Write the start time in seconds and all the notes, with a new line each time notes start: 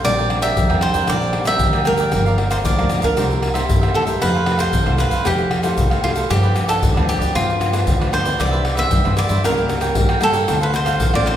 0.04 A#1 A#2 G3 C4 D4 A#4 D5 G5, pandeiro, tamborim, shaker, surdo
0.17 A#4 D5 G5, pandeiro, shaker
0.29 G3 C4 D4, muted cavaquinho stroke, pandeiro, tamborim
0.41 A#4 D5 E5 G5, pandeiro, tamborim, shaker, surdo
0.55 F2 F3 D4 A#4 D5 G5, pandeiro, shaker, surdo
0.69 F2 G3 C4 D4 A#4 D5 G5, pandeiro, tamborim, shaker
0.81 C5, pandeiro, tamborim
0.93 F2 A#4 D5 G5, pandeiro, shaker, surdo
1.07 A#1 A#2 G3 C4 D4 A#4 D5 G5, pandeiro, tamborim, shaker, surdo
1.21 pandeiro, shaker, surdo
1.33 muted cavaquinho stroke, pandeiro, tamborim
1.45 G3 C4 D4 A#4 D5 E5 G5, pandeiro, tamborim, shaker
1.59 D2 F3, pandeiro, shaker, surdo
1.73 A#4 D5 G5, pandeiro, tamborim, shaker
1.85 G3 C4 D4 A#4 D5 G5, pandeiro, tamborim, shaker
1.97 A#4 D5 G5, pandeiro, shaker, surdo
2.12 G1 G2 F3 A#3 D4 G4 A#4 D5 F5, pandeiro, tamborim, shaker, surdo
2.26 A#4 D5 F5, pandeiro, shaker
2.38 F3 A#3 D4, muted cavaquinho stroke, pandeiro, tamborim
2.50 A#4 C5 D5 F5, pandeiro, tamborim, shaker, surdo
2.64 D2 D3 F3 A#3 D4 G4 A#4 D5 F5, pandeiro, shaker, surdo
2.78 D2 F3 A#3 D4 A#4 D5 F5, pandeiro, tamborim, shaker
2.90 pandeiro, tamborim, shaker
3.02 D2 A#4 D5 F5, pandeiro, shaker, surdo
3.17 C2 C3 A#3 E4 G4 A#4 C5 E5, pandeiro, tamborim, shaker, surdo
3.30 pandeiro, shaker, surdo
3.42 muted cavaquinho stroke, pandeiro, tamborim
3.54 A#3 E4 G4 A#4 C5 E5, pandeiro, tamborim, shaker
3.69 G2, pandeiro, shaker, surdo
3.81 A#4 C5 E5, pandeiro, tamborim, shaker
3.94 A#3 E4 G4 A4 A#4 C5, pandeiro, tamborim, surdo
4.06 A3 E4 G4 A#4 C5 E5, pandeiro, shaker, surdo
4.20 F2 F3 E4 A4 B4 C5 F5, pandeiro, tamborim, shaker, surdo
4.34 A4 C5 F5, pandeiro, shaker
4.46 A3 E4 G4, muted cavaquinho stroke, pandeiro, tamborim
4.57 A4 C5 F5, pandeiro, tamborim, shaker, surdo
4.73 C2 C3 E4 A4 C5 F5, pandeiro, shaker, surdo
4.86 C2 A3 E4 G4 A4 C5 F5, pandeiro, tamborim, shaker
4.98 B4, pandeiro, tamborim, shaker
5.10 C2 A4 C5 F5, pandeiro, shaker, surdo
5.24 F2 F3 A3 E4 G4 A4 C5 F5, pandeiro, tamborim, shaker, surdo
5.38 pandeiro, shaker, surdo
5.50 muted cavaquinho stroke, pandeiro, tamborim
5.63 A3 E4 G4 A4 C5 F5, pandeiro, tamborim, shaker
5.77 C2 C3, pandeiro, shaker, surdo
5.90 A4 C5 F5, pandeiro, tamborim, shaker
6.02 A3 E4 F4 G4 A4 C5 F5, pandeiro, tamborim, surdo
6.15 A4 C5 F5, pandeiro, shaker, surdo
6.29 G2 F3 B3 D4 F4 G4 B4 D5, pandeiro, tamborim, shaker, surdo
6.43 G4 B4 D5, pandeiro, shaker
6.55 F3 B3 D4, muted cavaquinho stroke, pandeiro, tamborim, shaker
6.67 G4 A4 B4 D5, pandeiro, tamborim, shaker, surdo
6.81 D2 D3 F4 G4 B4 D5, pandeiro, shaker, surdo
6.94 D2 F3 B3 D4 G4 B4 D5, pandeiro, tamborim, shaker
7.09 G4, pandeiro, tamborim, shaker
7.19 D2 G4 B4 D5, pandeiro, shaker, surdo
7.33 G2 F3 B3 D4 F4 G4 B4 D5, pandeiro, tamborim, shaker, surdo
7.50 pandeiro, shaker, surdo
7.59 muted cavaquinho stroke, pandeiro, tamborim, shaker
7.72 F3 B3 D4 G4 B4 D5, pandeiro, tamborim, shaker
7.87 D2 D3, pandeiro, shaker, surdo
8.00 G4 B4 D5, pandeiro, tamborim, shaker
8.11 F3 B3 D4 F4 G4 B4 C5 D5, pandeiro, tamborim, shaker, surdo
8.24 E3 B3 D4 G4 B4 D5, pandeiro, shaker, surdo
8.38 C2 C3 G4 B4 C5 D5 E5, pandeiro, tamborim, shaker, surdo
8.51 B4 C5 E5, pandeiro, shaker
8.64 muted cavaquinho stroke, pandeiro, tamborim
8.75 E3 B3 D4 B4 C5 E5, pandeiro, tamborim, shaker, surdo
8.90 G2 G4 B4 C5 E5, pandeiro, shaker, surdo
9.04 G2 E3 B3 D4 B4 C5 E5, pandeiro, tamborim, shaker
9.17 D5, pandeiro, tamborim, shaker
9.29 G2 B4 C5 E5, pandeiro, shaker, surdo
9.43 C#2 C#3 G3 A#3 E4 A#4 C#5 G5, pandeiro, tamborim, shaker, surdo
9.57 G3 A#3 E4, pandeiro, shaker, surdo
9.69 muted cavaquinho stroke, pandeiro, tamborim, shaker
9.81 A#4 C#5 G5, pandeiro, tamborim, shaker
9.95 G2 C#3 G3 A#3 E4, pandeiro, shaker, surdo
10.09 A#4 C#5 G5, pandeiro, tamborim, shaker
10.21 G3 A#3 E4 A4 A#4 C#5 G5, pandeiro, tamborim, shaker, surdo
10.33 A#4 C#5 G5, pandeiro, shaker, surdo
10.47 D2 D3 C4 D4 F4 A4 C5 F5, pandeiro, tamborim, shaker, surdo
10.60 A4 B4 C5 F5, pandeiro, shaker
10.73 C4 F4 A4 C5, muted cavaquinho stroke, pandeiro, tamborim, shaker
10.85 A4 C5 F5, pandeiro, tamborim, shaker, surdo
11.00 A1 A2 D4 A4 C5 F5, pandeiro, shaker, surdo
11.13 A1 C4 F4 A4 C5 D5 F5, pandeiro, tamborim, shaker
11.26 C5, pandeiro, tamborim